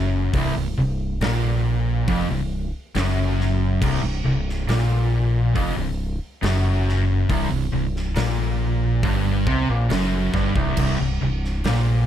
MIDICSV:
0, 0, Header, 1, 4, 480
1, 0, Start_track
1, 0, Tempo, 870827
1, 189, Time_signature, 4, 2, 24, 8
1, 6650, End_track
2, 0, Start_track
2, 0, Title_t, "Distorted electric guitar"
2, 0, Program_c, 0, 30
2, 0, Note_on_c, 0, 42, 114
2, 181, Note_off_c, 0, 42, 0
2, 183, Note_on_c, 0, 36, 116
2, 294, Note_off_c, 0, 36, 0
2, 301, Note_on_c, 0, 36, 77
2, 420, Note_off_c, 0, 36, 0
2, 426, Note_on_c, 0, 36, 74
2, 619, Note_off_c, 0, 36, 0
2, 668, Note_on_c, 0, 46, 109
2, 1140, Note_off_c, 0, 46, 0
2, 1148, Note_on_c, 0, 41, 102
2, 1260, Note_off_c, 0, 41, 0
2, 1264, Note_on_c, 0, 36, 73
2, 1457, Note_off_c, 0, 36, 0
2, 1627, Note_on_c, 0, 42, 103
2, 2099, Note_off_c, 0, 42, 0
2, 2102, Note_on_c, 0, 36, 113
2, 2212, Note_off_c, 0, 36, 0
2, 2218, Note_on_c, 0, 36, 73
2, 2333, Note_off_c, 0, 36, 0
2, 2339, Note_on_c, 0, 36, 74
2, 2534, Note_off_c, 0, 36, 0
2, 2580, Note_on_c, 0, 46, 110
2, 3055, Note_off_c, 0, 46, 0
2, 3059, Note_on_c, 0, 41, 107
2, 3175, Note_off_c, 0, 41, 0
2, 3184, Note_on_c, 0, 36, 75
2, 3376, Note_off_c, 0, 36, 0
2, 3539, Note_on_c, 0, 42, 112
2, 4014, Note_off_c, 0, 42, 0
2, 4018, Note_on_c, 0, 36, 111
2, 4128, Note_off_c, 0, 36, 0
2, 4135, Note_on_c, 0, 36, 74
2, 4248, Note_off_c, 0, 36, 0
2, 4255, Note_on_c, 0, 36, 70
2, 4452, Note_off_c, 0, 36, 0
2, 4500, Note_on_c, 0, 46, 107
2, 4975, Note_off_c, 0, 46, 0
2, 4982, Note_on_c, 0, 43, 100
2, 5217, Note_off_c, 0, 43, 0
2, 5222, Note_on_c, 0, 48, 103
2, 5337, Note_off_c, 0, 48, 0
2, 5344, Note_on_c, 0, 46, 104
2, 5458, Note_off_c, 0, 46, 0
2, 5464, Note_on_c, 0, 42, 105
2, 5698, Note_off_c, 0, 42, 0
2, 5709, Note_on_c, 0, 43, 104
2, 5821, Note_off_c, 0, 43, 0
2, 5825, Note_on_c, 0, 36, 99
2, 5934, Note_off_c, 0, 36, 0
2, 5940, Note_on_c, 0, 36, 109
2, 6056, Note_off_c, 0, 36, 0
2, 6064, Note_on_c, 0, 36, 79
2, 6173, Note_off_c, 0, 36, 0
2, 6179, Note_on_c, 0, 36, 71
2, 6375, Note_off_c, 0, 36, 0
2, 6424, Note_on_c, 0, 46, 106
2, 6650, Note_off_c, 0, 46, 0
2, 6650, End_track
3, 0, Start_track
3, 0, Title_t, "Fingered electric bass"
3, 0, Program_c, 1, 33
3, 0, Note_on_c, 1, 30, 94
3, 165, Note_off_c, 1, 30, 0
3, 183, Note_on_c, 1, 24, 100
3, 297, Note_off_c, 1, 24, 0
3, 308, Note_on_c, 1, 24, 82
3, 419, Note_off_c, 1, 24, 0
3, 426, Note_on_c, 1, 24, 81
3, 650, Note_off_c, 1, 24, 0
3, 666, Note_on_c, 1, 34, 100
3, 1124, Note_off_c, 1, 34, 0
3, 1145, Note_on_c, 1, 29, 106
3, 1257, Note_off_c, 1, 29, 0
3, 1265, Note_on_c, 1, 24, 84
3, 1488, Note_off_c, 1, 24, 0
3, 1626, Note_on_c, 1, 30, 94
3, 2083, Note_off_c, 1, 30, 0
3, 2103, Note_on_c, 1, 24, 98
3, 2215, Note_off_c, 1, 24, 0
3, 2221, Note_on_c, 1, 24, 81
3, 2334, Note_off_c, 1, 24, 0
3, 2338, Note_on_c, 1, 24, 81
3, 2564, Note_off_c, 1, 24, 0
3, 2580, Note_on_c, 1, 34, 102
3, 3040, Note_off_c, 1, 34, 0
3, 3061, Note_on_c, 1, 29, 100
3, 3174, Note_off_c, 1, 29, 0
3, 3179, Note_on_c, 1, 24, 87
3, 3405, Note_off_c, 1, 24, 0
3, 3543, Note_on_c, 1, 30, 93
3, 4001, Note_off_c, 1, 30, 0
3, 4021, Note_on_c, 1, 24, 96
3, 4134, Note_off_c, 1, 24, 0
3, 4138, Note_on_c, 1, 24, 80
3, 4253, Note_off_c, 1, 24, 0
3, 4257, Note_on_c, 1, 24, 75
3, 4484, Note_off_c, 1, 24, 0
3, 4499, Note_on_c, 1, 34, 100
3, 4960, Note_off_c, 1, 34, 0
3, 4977, Note_on_c, 1, 31, 97
3, 5204, Note_off_c, 1, 31, 0
3, 5220, Note_on_c, 1, 36, 95
3, 5334, Note_off_c, 1, 36, 0
3, 5342, Note_on_c, 1, 34, 88
3, 5455, Note_off_c, 1, 34, 0
3, 5459, Note_on_c, 1, 30, 97
3, 5686, Note_off_c, 1, 30, 0
3, 5696, Note_on_c, 1, 31, 94
3, 5812, Note_off_c, 1, 31, 0
3, 5816, Note_on_c, 1, 24, 94
3, 5932, Note_off_c, 1, 24, 0
3, 5939, Note_on_c, 1, 24, 97
3, 6054, Note_off_c, 1, 24, 0
3, 6061, Note_on_c, 1, 24, 81
3, 6175, Note_off_c, 1, 24, 0
3, 6183, Note_on_c, 1, 24, 78
3, 6408, Note_off_c, 1, 24, 0
3, 6420, Note_on_c, 1, 34, 100
3, 6650, Note_off_c, 1, 34, 0
3, 6650, End_track
4, 0, Start_track
4, 0, Title_t, "Drums"
4, 185, Note_on_c, 9, 36, 108
4, 187, Note_on_c, 9, 46, 64
4, 240, Note_off_c, 9, 36, 0
4, 242, Note_off_c, 9, 46, 0
4, 668, Note_on_c, 9, 46, 60
4, 676, Note_on_c, 9, 38, 116
4, 723, Note_off_c, 9, 46, 0
4, 731, Note_off_c, 9, 38, 0
4, 1146, Note_on_c, 9, 36, 111
4, 1148, Note_on_c, 9, 46, 59
4, 1201, Note_off_c, 9, 36, 0
4, 1203, Note_off_c, 9, 46, 0
4, 1626, Note_on_c, 9, 46, 58
4, 1634, Note_on_c, 9, 38, 113
4, 1681, Note_off_c, 9, 46, 0
4, 1689, Note_off_c, 9, 38, 0
4, 1876, Note_on_c, 9, 38, 34
4, 1931, Note_off_c, 9, 38, 0
4, 2104, Note_on_c, 9, 36, 108
4, 2106, Note_on_c, 9, 49, 98
4, 2159, Note_off_c, 9, 36, 0
4, 2161, Note_off_c, 9, 49, 0
4, 2476, Note_on_c, 9, 38, 33
4, 2532, Note_off_c, 9, 38, 0
4, 2584, Note_on_c, 9, 46, 62
4, 2591, Note_on_c, 9, 38, 112
4, 2639, Note_off_c, 9, 46, 0
4, 2647, Note_off_c, 9, 38, 0
4, 3063, Note_on_c, 9, 36, 108
4, 3066, Note_on_c, 9, 46, 64
4, 3118, Note_off_c, 9, 36, 0
4, 3121, Note_off_c, 9, 46, 0
4, 3544, Note_on_c, 9, 46, 62
4, 3552, Note_on_c, 9, 38, 114
4, 3599, Note_off_c, 9, 46, 0
4, 3607, Note_off_c, 9, 38, 0
4, 3796, Note_on_c, 9, 38, 35
4, 3851, Note_off_c, 9, 38, 0
4, 4021, Note_on_c, 9, 36, 106
4, 4025, Note_on_c, 9, 46, 64
4, 4076, Note_off_c, 9, 36, 0
4, 4080, Note_off_c, 9, 46, 0
4, 4388, Note_on_c, 9, 38, 34
4, 4443, Note_off_c, 9, 38, 0
4, 4496, Note_on_c, 9, 46, 62
4, 4504, Note_on_c, 9, 38, 111
4, 4551, Note_off_c, 9, 46, 0
4, 4559, Note_off_c, 9, 38, 0
4, 4978, Note_on_c, 9, 36, 109
4, 4979, Note_on_c, 9, 46, 61
4, 5034, Note_off_c, 9, 36, 0
4, 5035, Note_off_c, 9, 46, 0
4, 5219, Note_on_c, 9, 36, 113
4, 5274, Note_off_c, 9, 36, 0
4, 5457, Note_on_c, 9, 46, 60
4, 5465, Note_on_c, 9, 38, 110
4, 5512, Note_off_c, 9, 46, 0
4, 5520, Note_off_c, 9, 38, 0
4, 5697, Note_on_c, 9, 36, 112
4, 5704, Note_on_c, 9, 38, 33
4, 5753, Note_off_c, 9, 36, 0
4, 5760, Note_off_c, 9, 38, 0
4, 5818, Note_on_c, 9, 36, 105
4, 5873, Note_off_c, 9, 36, 0
4, 5935, Note_on_c, 9, 49, 97
4, 5939, Note_on_c, 9, 36, 107
4, 5990, Note_off_c, 9, 49, 0
4, 5994, Note_off_c, 9, 36, 0
4, 6308, Note_on_c, 9, 38, 30
4, 6363, Note_off_c, 9, 38, 0
4, 6417, Note_on_c, 9, 46, 61
4, 6425, Note_on_c, 9, 38, 112
4, 6472, Note_off_c, 9, 46, 0
4, 6480, Note_off_c, 9, 38, 0
4, 6650, End_track
0, 0, End_of_file